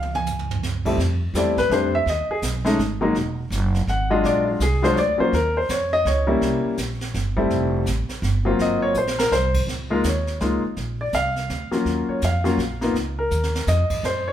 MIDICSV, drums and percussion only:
0, 0, Header, 1, 2, 480
1, 0, Start_track
1, 0, Key_signature, -5, "major"
1, 0, Tempo, 362538
1, 1307, Time_signature, 3, 2, 24, 8
1, 18968, End_track
2, 0, Start_track
2, 0, Title_t, "Drums"
2, 32, Note_on_c, 9, 48, 47
2, 165, Note_off_c, 9, 48, 0
2, 195, Note_on_c, 9, 48, 62
2, 327, Note_off_c, 9, 48, 0
2, 348, Note_on_c, 9, 44, 53
2, 354, Note_on_c, 9, 43, 54
2, 481, Note_off_c, 9, 44, 0
2, 486, Note_off_c, 9, 43, 0
2, 516, Note_on_c, 9, 43, 62
2, 648, Note_off_c, 9, 43, 0
2, 673, Note_on_c, 9, 43, 83
2, 805, Note_off_c, 9, 43, 0
2, 833, Note_on_c, 9, 38, 51
2, 966, Note_off_c, 9, 38, 0
2, 1129, Note_on_c, 9, 36, 68
2, 1134, Note_on_c, 9, 49, 61
2, 1261, Note_off_c, 9, 36, 0
2, 1267, Note_off_c, 9, 49, 0
2, 1312, Note_on_c, 9, 25, 49
2, 1312, Note_on_c, 9, 38, 43
2, 1444, Note_off_c, 9, 38, 0
2, 1781, Note_on_c, 9, 44, 63
2, 1787, Note_on_c, 9, 38, 60
2, 1914, Note_off_c, 9, 44, 0
2, 1919, Note_off_c, 9, 38, 0
2, 2083, Note_on_c, 9, 36, 58
2, 2084, Note_on_c, 9, 38, 45
2, 2215, Note_off_c, 9, 36, 0
2, 2217, Note_off_c, 9, 38, 0
2, 2265, Note_on_c, 9, 38, 42
2, 2397, Note_off_c, 9, 38, 0
2, 2741, Note_off_c, 9, 25, 0
2, 2741, Note_on_c, 9, 25, 51
2, 2741, Note_on_c, 9, 38, 45
2, 2873, Note_off_c, 9, 38, 0
2, 3206, Note_on_c, 9, 44, 58
2, 3212, Note_on_c, 9, 38, 60
2, 3339, Note_off_c, 9, 44, 0
2, 3344, Note_off_c, 9, 38, 0
2, 3514, Note_on_c, 9, 38, 43
2, 3646, Note_off_c, 9, 38, 0
2, 3696, Note_on_c, 9, 38, 41
2, 3828, Note_off_c, 9, 38, 0
2, 4173, Note_off_c, 9, 25, 0
2, 4173, Note_on_c, 9, 25, 56
2, 4173, Note_on_c, 9, 38, 47
2, 4305, Note_off_c, 9, 38, 0
2, 4653, Note_on_c, 9, 44, 56
2, 4658, Note_on_c, 9, 38, 57
2, 4785, Note_off_c, 9, 44, 0
2, 4791, Note_off_c, 9, 38, 0
2, 4957, Note_on_c, 9, 38, 42
2, 5089, Note_off_c, 9, 38, 0
2, 5139, Note_on_c, 9, 38, 43
2, 5271, Note_off_c, 9, 38, 0
2, 5618, Note_off_c, 9, 25, 0
2, 5618, Note_on_c, 9, 25, 46
2, 5618, Note_on_c, 9, 38, 44
2, 5750, Note_off_c, 9, 38, 0
2, 6093, Note_on_c, 9, 44, 59
2, 6098, Note_on_c, 9, 38, 58
2, 6226, Note_off_c, 9, 44, 0
2, 6231, Note_off_c, 9, 38, 0
2, 6401, Note_on_c, 9, 38, 43
2, 6534, Note_off_c, 9, 38, 0
2, 6576, Note_on_c, 9, 38, 42
2, 6708, Note_off_c, 9, 38, 0
2, 7058, Note_off_c, 9, 25, 0
2, 7058, Note_on_c, 9, 25, 49
2, 7058, Note_on_c, 9, 38, 44
2, 7190, Note_off_c, 9, 38, 0
2, 7531, Note_on_c, 9, 44, 52
2, 7536, Note_on_c, 9, 38, 62
2, 7663, Note_off_c, 9, 44, 0
2, 7668, Note_off_c, 9, 38, 0
2, 8018, Note_on_c, 9, 38, 41
2, 8150, Note_off_c, 9, 38, 0
2, 8494, Note_off_c, 9, 25, 0
2, 8494, Note_on_c, 9, 25, 54
2, 8494, Note_on_c, 9, 38, 45
2, 8626, Note_off_c, 9, 38, 0
2, 8969, Note_on_c, 9, 44, 59
2, 8974, Note_on_c, 9, 38, 59
2, 9101, Note_off_c, 9, 44, 0
2, 9107, Note_off_c, 9, 38, 0
2, 9279, Note_on_c, 9, 38, 51
2, 9411, Note_off_c, 9, 38, 0
2, 9455, Note_on_c, 9, 38, 42
2, 9587, Note_off_c, 9, 38, 0
2, 9755, Note_on_c, 9, 36, 51
2, 9888, Note_off_c, 9, 36, 0
2, 9934, Note_off_c, 9, 25, 0
2, 9934, Note_on_c, 9, 25, 51
2, 9934, Note_on_c, 9, 38, 46
2, 10066, Note_off_c, 9, 38, 0
2, 10408, Note_on_c, 9, 44, 54
2, 10414, Note_on_c, 9, 38, 61
2, 10541, Note_off_c, 9, 44, 0
2, 10546, Note_off_c, 9, 38, 0
2, 10711, Note_on_c, 9, 38, 46
2, 10844, Note_off_c, 9, 38, 0
2, 10892, Note_on_c, 9, 38, 45
2, 11025, Note_off_c, 9, 38, 0
2, 11373, Note_off_c, 9, 25, 0
2, 11373, Note_on_c, 9, 25, 47
2, 11373, Note_on_c, 9, 38, 46
2, 11506, Note_off_c, 9, 38, 0
2, 11842, Note_on_c, 9, 44, 52
2, 11975, Note_off_c, 9, 44, 0
2, 12012, Note_on_c, 9, 38, 67
2, 12144, Note_off_c, 9, 38, 0
2, 12170, Note_on_c, 9, 38, 90
2, 12303, Note_off_c, 9, 38, 0
2, 12335, Note_on_c, 9, 38, 57
2, 12468, Note_off_c, 9, 38, 0
2, 12635, Note_on_c, 9, 49, 74
2, 12637, Note_on_c, 9, 36, 72
2, 12767, Note_off_c, 9, 49, 0
2, 12769, Note_off_c, 9, 36, 0
2, 12816, Note_off_c, 9, 25, 0
2, 12816, Note_on_c, 9, 25, 43
2, 12816, Note_on_c, 9, 38, 41
2, 12948, Note_off_c, 9, 38, 0
2, 13288, Note_on_c, 9, 44, 53
2, 13293, Note_on_c, 9, 38, 55
2, 13420, Note_off_c, 9, 44, 0
2, 13426, Note_off_c, 9, 38, 0
2, 13596, Note_on_c, 9, 38, 37
2, 13729, Note_off_c, 9, 38, 0
2, 13774, Note_on_c, 9, 38, 42
2, 13906, Note_off_c, 9, 38, 0
2, 14253, Note_off_c, 9, 25, 0
2, 14253, Note_on_c, 9, 25, 43
2, 14253, Note_on_c, 9, 38, 42
2, 14386, Note_off_c, 9, 38, 0
2, 14730, Note_on_c, 9, 44, 47
2, 14735, Note_on_c, 9, 38, 54
2, 14862, Note_off_c, 9, 44, 0
2, 14868, Note_off_c, 9, 38, 0
2, 15041, Note_on_c, 9, 38, 39
2, 15173, Note_off_c, 9, 38, 0
2, 15219, Note_on_c, 9, 38, 44
2, 15351, Note_off_c, 9, 38, 0
2, 15516, Note_on_c, 9, 38, 33
2, 15649, Note_off_c, 9, 38, 0
2, 15699, Note_off_c, 9, 25, 0
2, 15699, Note_on_c, 9, 25, 43
2, 15699, Note_on_c, 9, 38, 40
2, 15832, Note_off_c, 9, 38, 0
2, 16174, Note_on_c, 9, 44, 54
2, 16179, Note_on_c, 9, 38, 61
2, 16307, Note_off_c, 9, 44, 0
2, 16312, Note_off_c, 9, 38, 0
2, 16480, Note_on_c, 9, 38, 41
2, 16613, Note_off_c, 9, 38, 0
2, 16664, Note_on_c, 9, 38, 42
2, 16797, Note_off_c, 9, 38, 0
2, 16964, Note_on_c, 9, 38, 44
2, 17097, Note_off_c, 9, 38, 0
2, 17148, Note_off_c, 9, 25, 0
2, 17148, Note_on_c, 9, 25, 49
2, 17148, Note_on_c, 9, 38, 46
2, 17280, Note_off_c, 9, 38, 0
2, 17620, Note_on_c, 9, 44, 55
2, 17626, Note_on_c, 9, 47, 44
2, 17753, Note_off_c, 9, 44, 0
2, 17758, Note_off_c, 9, 47, 0
2, 17786, Note_on_c, 9, 38, 59
2, 17918, Note_off_c, 9, 38, 0
2, 17946, Note_on_c, 9, 38, 81
2, 18078, Note_off_c, 9, 38, 0
2, 18099, Note_on_c, 9, 44, 57
2, 18105, Note_on_c, 9, 38, 49
2, 18232, Note_off_c, 9, 44, 0
2, 18237, Note_off_c, 9, 38, 0
2, 18402, Note_on_c, 9, 49, 73
2, 18404, Note_on_c, 9, 36, 72
2, 18534, Note_off_c, 9, 49, 0
2, 18537, Note_off_c, 9, 36, 0
2, 18584, Note_off_c, 9, 25, 0
2, 18584, Note_on_c, 9, 25, 42
2, 18584, Note_on_c, 9, 38, 45
2, 18717, Note_off_c, 9, 38, 0
2, 18968, Note_off_c, 9, 25, 0
2, 18968, End_track
0, 0, End_of_file